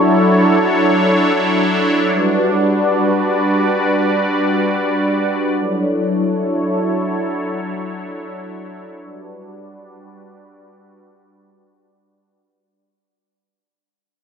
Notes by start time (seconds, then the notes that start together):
Already playing: F#3 D4 E4 A4 C#5
2.12 G3 F#4 B4 D5
5.57 F#3 E4 A4 C#5
9.03 G3 D4 F#4 B4 D5